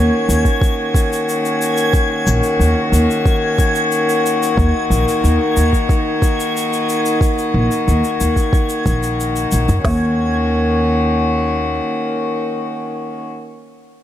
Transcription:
Already playing: string quartet D#3 A#3 C#4 F#4, synth texture G#6
0.29 upright bass D#2, shaker
0.45 kick, shaker
0.62 kick, shaker
0.94 kick, shaker
1.13 shaker
1.29 shaker
1.45 shaker
1.62 shaker
1.77 shaker
1.93 kick, shaker
2.27 upright bass A#1, shaker
2.43 shaker
2.59 upright bass D#2, shaker
2.92 upright bass D#2, shaker
3.11 shaker
3.26 kick, shaker
3.59 kick, shaker
3.75 shaker
3.92 shaker
4.09 shaker
4.26 shaker
4.43 shaker
4.57 upright bass D#2, string quartet D#4, kick, shaker
4.90 upright bass A#1, shaker
5.08 shaker
5.24 upright bass D#2, shaker
5.57 upright bass D#2, shaker
5.73 kick, shaker
5.89 kick, shaker
6.22 kick, shaker
6.40 shaker
6.57 shaker
6.73 shaker
6.89 shaker
7.06 shaker
7.21 kick, shaker
7.38 shaker
7.54 upright bass A#1
7.71 shaker
7.88 upright bass D#2, shaker
8.04 shaker
8.21 upright bass D#2, shaker
8.36 kick, shaker
8.53 kick, shaker
8.69 shaker
8.86 upright bass A#1, kick, shaker
9.03 shaker
9.20 shaker
9.36 shaker
9.52 upright bass A#1, shaker
9.69 upright bass F#2, shaker
9.84 upright bass D#2, string quartet D#3 A#3 C#4 F#4, kick, snare, open hi-hat

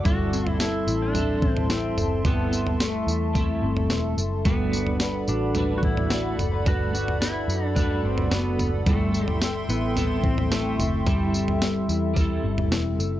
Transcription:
Already playing: clean electric guitar F#4 D5
0.04 picked electric bass G1, clean electric guitar G3 C4 A4, pedal steel guitar F#4, analog synth pad A4 E5 A5 C6, kick, floor tom, tambourine
0.08 clean electric guitar E4 A4
0.33 clean electric guitar C4, tambourine
0.47 pedal steel guitar E4, floor tom
0.60 pedal steel guitar E4, clean electric guitar A4, snare, tambourine
0.87 picked electric bass A1, clean electric guitar E4, tambourine
1.02 pedal steel guitar D4
1.13 clean electric guitar G3 C4 A4, floor tom, tambourine
1.18 clean electric guitar E4 A4
1.42 picked electric bass A1, clean electric guitar C4, kick
1.50 pedal steel guitar C4
1.57 floor tom
1.69 pedal steel guitar C4, clean electric guitar E4, snare, tambourine
1.97 picked electric bass F#1, clean electric guitar A4, floor tom, tambourine
2.24 picked electric bass G1, clean electric guitar G3 C4 E4 A4, pedal steel guitar B3, kick, floor tom, tambourine
2.51 clean electric guitar C4 E4 A4, tambourine
2.56 clean electric guitar C4
2.67 floor tom
2.80 pedal steel guitar A3, clean electric guitar A4, snare, tambourine
3.07 picked electric bass E2, clean electric guitar E4, tambourine
3.33 clean electric guitar G3 C4 E4 A4, kick, floor tom, tambourine
3.40 clean electric guitar A4
3.62 picked electric bass G1, clean electric guitar C4
3.77 floor tom
3.90 picked electric bass E1, clean electric guitar E4, snare, tambourine
4.18 picked electric bass F#1, clean electric guitar A4, tambourine
4.45 picked electric bass G1, clean electric guitar G3 A3 D4 F#4 B4, pedal steel guitar B3, analog synth pad D5 F#5 B5, kick, floor tom, tambourine
4.72 clean electric guitar D4 F#4 B4, tambourine
4.87 floor tom
5.00 clean electric guitar B4, snare, tambourine
5.28 picked electric bass A1, pedal steel guitar D4, clean electric guitar F#4, tambourine
5.55 clean electric guitar G3 A3 D4 F#4 B4, floor tom, tambourine
5.78 pedal steel guitar F#4
5.83 picked electric bass A1, clean electric guitar D4, pedal steel guitar E4, kick
5.97 floor tom
6.10 clean electric guitar A3 D4 F#4, snare, tambourine
6.15 clean electric guitar B4
6.38 picked electric bass F#1, clean electric guitar A4, floor tom, tambourine
6.52 clean electric guitar B4
6.65 picked electric bass G1, clean electric guitar G3 A3 D4 F#4 B4, pedal steel guitar F#4, kick, floor tom, tambourine
6.93 clean electric guitar D4 F#4 B4, pedal steel guitar F#4, tambourine
6.98 clean electric guitar D4
7.08 floor tom
7.20 pedal steel guitar E4, clean electric guitar B4, snare, tambourine
7.48 picked electric bass F#2, clean electric guitar F#4, tambourine
7.66 pedal steel guitar D4
7.75 clean electric guitar G3 A3 D4 B4, pedal steel guitar D4, kick, floor tom, tambourine
7.80 clean electric guitar F#4 B4
8.04 picked electric bass G1, pedal steel guitar C4, clean electric guitar D4
8.18 floor tom
8.31 picked electric bass F#1, pedal steel guitar B3, clean electric guitar F#4, snare, tambourine
8.59 picked electric bass F#1, clean electric guitar B4, floor tom, tambourine
8.86 picked electric bass G1, clean electric guitar G3 C4 E4 A4, pedal steel guitar A3, analog synth pad E5 G5 C6, kick, floor tom, tambourine
9.13 clean electric guitar E4 A4, tambourine
9.17 clean electric guitar C4
9.28 floor tom
9.41 clean electric guitar A4, snare, tambourine
9.69 picked electric bass A1, pedal steel guitar B3, clean electric guitar E4, tambourine
9.95 clean electric guitar G3 C4 E4 A4, floor tom, tambourine
10.23 picked electric bass A1, pedal steel guitar C4, clean electric guitar C4, kick
10.38 floor tom
10.51 clean electric guitar G3 C4 E4, pedal steel guitar A3, snare, tambourine
10.55 clean electric guitar A4
10.79 picked electric bass F#1, clean electric guitar A4, floor tom, tambourine
11.06 picked electric bass G1, clean electric guitar G3 C4 E4 A4, pedal steel guitar G3, kick, floor tom, tambourine
11.32 clean electric guitar C4 E4 A4, tambourine
11.37 clean electric guitar C4
11.48 floor tom
11.61 clean electric guitar A4, snare, tambourine
11.89 picked electric bass E2, clean electric guitar E4, tambourine
12.14 clean electric guitar G3 C4 A4, kick, floor tom, tambourine
12.19 clean electric guitar E4 A4
12.43 picked electric bass G1, clean electric guitar C4
12.58 floor tom
12.71 picked electric bass E1, clean electric guitar E4, snare, tambourine
12.99 picked electric bass F#1, clean electric guitar A4, tambourine

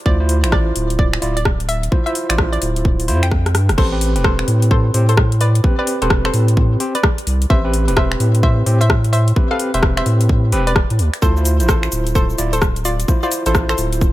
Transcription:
0.06 sub bass D2, tine electric piano E4 F4 C5, synth pluck D5, kick
0.20 tine electric piano E4 F4 C5
0.29 open hi-hat
0.43 sub bass A1, tine electric piano E4 F4 C5, finger snap, closed hi-hat
0.52 synth pluck D5, kick, cross-stick
0.76 sub bass D1, open hi-hat
0.90 closed hi-hat
0.99 synth pluck D5, kick
1.13 finger snap
1.22 sub bass D1, tine electric piano E4 F4 D5, open hi-hat
1.37 synth pluck D5, closed hi-hat
1.45 kick, cross-stick
1.60 closed hi-hat
1.69 synth pluck E5, open hi-hat
1.83 closed hi-hat
1.92 tine electric piano E4 F4 C5, kick
2.06 tine electric piano E4 F4 C5, synth pluck E5, closed hi-hat
2.15 open hi-hat
2.29 sub bass A1, tine electric piano E4 F4 C5, synth pluck D5, finger snap, closed hi-hat
2.38 kick, cross-stick
2.53 synth pluck D5, closed hi-hat
2.62 sub bass D1, open hi-hat
2.76 closed hi-hat
2.85 kick
3.00 open hi-hat
3.08 sub bass F2, tine electric piano E4 F4 C5, open hi-hat
3.23 synth pluck G5, finger snap, closed hi-hat
3.32 kick, cross-stick
3.46 cross-stick, closed hi-hat
3.55 sub bass G2, cross-stick, open hi-hat
3.69 sub bass D1, cross-stick, closed hi-hat
3.78 sub bass A1, tine electric piano C4 G4 B4, synth pluck A4 C5, kick, crash
3.92 tine electric piano C4 G4 B4
4.01 open hi-hat
4.16 sub bass E1, tine electric piano C4 G4 B4, closed hi-hat
4.24 synth pluck A4 C5, kick, cross-stick
4.39 finger snap
4.48 sub bass A2, open hi-hat
4.62 closed hi-hat
4.71 synth pluck A4 C5, kick
4.94 sub bass A2, tine electric piano C4 G4 C5, open hi-hat
5.09 synth pluck A4 C5, closed hi-hat
5.17 kick, cross-stick
5.32 closed hi-hat
5.41 synth pluck B4 D5, open hi-hat
5.55 closed hi-hat
5.64 tine electric piano C4 G4 B4, kick
5.78 tine electric piano C4 G4 B4, synth pluck B4 D5
5.87 open hi-hat
6.02 sub bass E1, tine electric piano C4 G4 B4, synth pluck A4 C5, closed hi-hat
6.10 kick, cross-stick
6.25 synth pluck A4 C5, finger snap
6.34 sub bass A2, open hi-hat
6.48 closed hi-hat
6.57 kick
6.80 tine electric piano C4 G4 C5, open hi-hat
6.95 synth pluck B4 D5, closed hi-hat
7.04 kick, cross-stick
7.18 closed hi-hat
7.27 sub bass C2, open hi-hat
7.42 closed hi-hat
7.50 sub bass A1, tine electric piano C4 G4 B4, synth pluck C5 E5, kick
7.65 tine electric piano C4 G4 B4
7.74 open hi-hat
7.88 sub bass E1, tine electric piano C4 G4 B4, closed hi-hat
7.96 synth pluck C5 E5, kick, cross-stick
8.12 finger snap
8.20 sub bass A2, open hi-hat
8.35 closed hi-hat
8.43 synth pluck C5 E5, kick
8.66 sub bass A2, tine electric piano C4 G4 C5, open hi-hat
8.81 synth pluck C5 E5, closed hi-hat
8.90 kick, cross-stick
9.04 closed hi-hat
9.13 synth pluck C5 E5, open hi-hat
9.28 closed hi-hat
9.36 tine electric piano C4 G4 B4, kick
9.51 tine electric piano C4 G4 B4, synth pluck A4 F5
9.59 open hi-hat
9.74 sub bass E1, tine electric piano C4 G4 B4, synth pluck C5 E5, closed hi-hat
9.83 kick, cross-stick
9.97 synth pluck C5 E5, finger snap, closed hi-hat
10.06 sub bass A2, open hi-hat
10.21 closed hi-hat
10.29 kick
10.52 sub bass E1, tine electric piano C4 G4 B4, open hi-hat
10.67 synth pluck B4 D5, closed hi-hat
10.76 kick, cross-stick
10.90 sub bass A2, closed hi-hat
10.99 sub bass D2, open hi-hat
11.14 finger snap, closed hi-hat
11.22 sub bass D2, tine electric piano E4 F4 C5, synth pluck A4 C5, kick, shaker
11.37 tine electric piano E4 F4 C5, shaker
11.45 open hi-hat, shaker
11.60 sub bass A1, tine electric piano E4 F4 C5, closed hi-hat, shaker
11.69 synth pluck A4 C5, kick, cross-stick, shaker
11.83 finger snap, shaker
11.92 sub bass D1, open hi-hat, shaker
12.07 closed hi-hat, shaker
12.15 synth pluck A4 C5, kick, shaker
12.30 shaker
12.38 sub bass D1, tine electric piano E4 F4 D5, open hi-hat, shaker
12.53 synth pluck A4 C5, closed hi-hat, shaker
12.62 kick, cross-stick, shaker
12.76 closed hi-hat, shaker
12.85 synth pluck F4 D5, open hi-hat, shaker
13.00 closed hi-hat, shaker
13.08 tine electric piano E4 F4 C5, kick, shaker
13.23 tine electric piano E4 F4 C5, synth pluck F4 D5, shaker
13.32 open hi-hat, shaker
13.46 sub bass A1, tine electric piano E4 F4 C5, synth pluck A4 C5, closed hi-hat, shaker
13.55 kick, cross-stick, shaker
13.69 synth pluck A4 C5, finger snap, shaker
13.78 sub bass D1, open hi-hat, shaker
13.93 closed hi-hat, shaker
14.01 kick, shaker

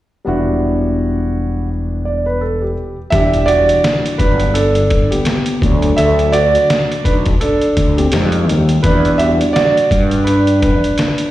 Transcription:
0.25 fretless electric bass E1, grand piano G3 B3 D4 E4 F#4
2.05 grand piano D5
2.26 grand piano B4
2.41 grand piano A4
2.62 grand piano G4
3.10 fretless electric bass E1, grand piano E3 G3 D4 G4 E5, kick, closed hi-hat
3.34 closed hi-hat
3.46 grand piano F#4 D5, closed hi-hat
3.69 closed hi-hat
3.84 snare, closed hi-hat
4.06 closed hi-hat
4.18 fretless electric bass G1, grand piano F#3 G3 D4 B4, kick, closed hi-hat
4.40 closed hi-hat
4.54 grand piano D4 A4, closed hi-hat
4.75 closed hi-hat
4.90 kick, closed hi-hat
5.11 grand piano B3 G4, closed hi-hat
5.25 snare, closed hi-hat
5.46 closed hi-hat
5.61 fretless electric bass D2, grand piano F#3 A3 D4, kick, closed hi-hat
5.82 closed hi-hat
5.96 fretless electric bass D2, grand piano A4 E5, closed hi-hat
6.19 closed hi-hat
6.32 grand piano F#4 D5, closed hi-hat
6.55 closed hi-hat
6.70 snare, closed hi-hat
6.92 closed hi-hat
7.04 fretless electric bass B1, grand piano D4 B4, kick, closed hi-hat
7.26 kick, closed hi-hat
7.41 grand piano D4 A4, closed hi-hat
7.62 closed hi-hat
7.77 fretless electric bass D2, kick, closed hi-hat
7.97 grand piano C4 G4, closed hi-hat
8.12 fretless electric bass F2, grand piano G3 G#3 D#4, snare, closed hi-hat
8.32 closed hi-hat
8.48 fretless electric bass D#2, closed hi-hat
8.69 closed hi-hat
8.83 fretless electric bass E2, grand piano D4 B4, kick, closed hi-hat
9.05 closed hi-hat
9.18 grand piano G3 D4 F#4 G4 E5, closed hi-hat
9.41 closed hi-hat
9.53 grand piano F#4 D5, snare, closed hi-hat
9.77 closed hi-hat
9.91 fretless electric bass G2, kick, closed hi-hat
10.11 closed hi-hat
10.24 grand piano D4 B4, closed hi-hat
10.47 closed hi-hat
10.60 grand piano D4 B4, kick, closed hi-hat
10.84 closed hi-hat
10.98 snare, closed hi-hat
11.18 closed hi-hat

